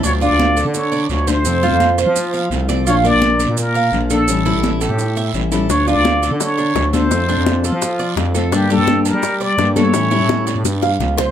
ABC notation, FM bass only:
X:1
M:4/4
L:1/16
Q:1/4=170
K:Dm
V:1 name="FM bass" clef=bass
D,,3 D,,4 D,4- D, D,,4 | F,,3 F,,4 F,4- F, C,,4 | B,,,3 B,,,4 B,,4- B,, B,,,4 | A,,,3 A,,,4 A,,4- A,, A,,,4 |
D,,3 D,,4 D,4- D, D,,4 | F,,3 F,,4 F,4- F, F,,4 | G,,3 G,,4 G,4- G, G,,4 | A,,3 A,,4 A,, G,,4 ^C,,4 |]